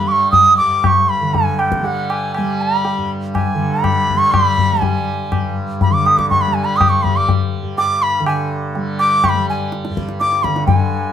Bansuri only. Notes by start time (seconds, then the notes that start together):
0.08 C#6 D6
0.31 D#6
0.57 D6
0.83 D6
0.87 C#6
1.09 B5
1.34 G#5
1.59 G5
1.86 F#5
2.10 G#5
2.35 G#5
2.62 B5
3.34 G#5
3.82 B5
4.18 C#6
4.32 B5
4.81 G#5
5.82 B5
5.92 D6
6.06 D#6
6.17 D6
6.30 C#6
6.41 B5
6.54 G#5
6.65 B5
6.77 D#6
6.89 C#6
7.03 B5
7.16 D6
7.78 D6
8.02 B5
8.28 G#5
8.99 D6
9.25 C#6
9.29 B5
9.50 G#5
10.20 D6
10.43 B5
10.67 G#5